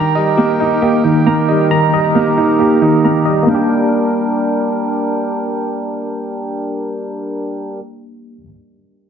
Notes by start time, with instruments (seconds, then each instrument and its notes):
Already playing: grand piano D#3, harmonium D#4 G4 A#4 G5, tine electric piano A#5
0.15 grand piano G3, tine electric piano D#5
0.37 grand piano A#3, tine electric piano G4
0.60 grand piano D#4, tine electric piano D#4
0.82 tine electric piano A#3, grand piano G4
1.04 tine electric piano D#3, grand piano D#4
1.26 grand piano A#3, tine electric piano A#5
1.49 grand piano G3, tine electric piano D#5
1.71 grand piano D#3, harmonium A#5, tine electric piano A#5
1.93 grand piano G3, tine electric piano D#5
2.15 grand piano A#3, tine electric piano G4
2.37 tine electric piano D#4, grand piano D#4
2.59 tine electric piano A#3, grand piano G4
2.82 tine electric piano D#3, grand piano D#4
3.04 grand piano A#3, tine electric piano A#5
3.25 grand piano G3, tine electric piano D#5
3.42 grand piano G3 A#3, tine electric piano A#3
3.48 harmonium G3 D4 A#4 G5, tine electric piano D4, grand piano D4
3.54 grand piano G4, tine electric piano G4